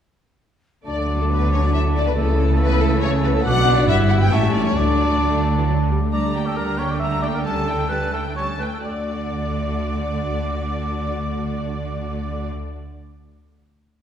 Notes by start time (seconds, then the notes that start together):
0.86 D2 D3 F#3 A3 D4 F#4 D5 A5 D6
1.19 A3 A4
1.30 B3 B4
1.51 C#4 C#5
1.62 D4 D5
1.73 E4 E5
1.94 D4 D5
2.05 B3 B4
2.16 C#2 C#3 E3 A3 E4 A4 E6
2.60 B3 B4
2.81 A3 A4
3.02 C#4 C#5
3.24 B3 B4
3.34 A3 A4
3.45 B1 B2 F#3 B3 D4 F#4 B4 F#5 D6
3.78 D4 D5
3.88 G1 G2 G3 E4 G4 B4 E5 E6
4.10 F#4 F#5
4.21 G4 G5
4.32 A1 A2 A3 C#4 E4 G4 E5 A5 C#6
4.54 D4 D5
4.66 C#4 C#5
4.76 D2 D3 F#3 D4 F#4 D5 A5 D6
5.23 A3
5.57 E3
5.68 F#3
5.90 G3
6.03 A3
6.13 D2 D3 G3 D4 D5 A#5
6.35 A#3 G4 G5
6.47 A4
6.56 G3 D4 A#4 A#5
6.78 A#3 G4 C#5 G5
6.91 D5
7.00 G3 D4 E5 A#5
7.22 A#3 G4 D5 G5
7.34 A#4
7.44 G3 C#4 A4 A5
7.68 A3 E4 G5
7.89 G3 C#4 B4 A5
8.13 A3 E4 A4 G5
8.36 G3 C#4 C#5 A5
8.59 A3 E4 B4 G5
8.73 A4
8.84 D2 D3 A3 F#4 D5